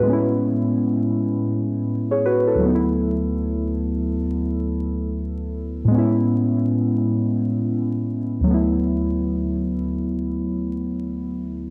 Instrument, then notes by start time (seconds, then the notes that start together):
synth keys
Already playing: F#4 B4
0.00 A2 G#3
0.06 B3 C#4
0.13 E4
2.11 G#4 C#5
2.26 F#4 B4
2.47 E4 A4
2.55 D2 F#3
2.62 A3 B3
2.69 D#4
2.75 E4
5.85 A2 G#3
5.91 B3 C#4
5.98 E4
8.41 D2 F#3
8.47 A3 B3
8.54 E4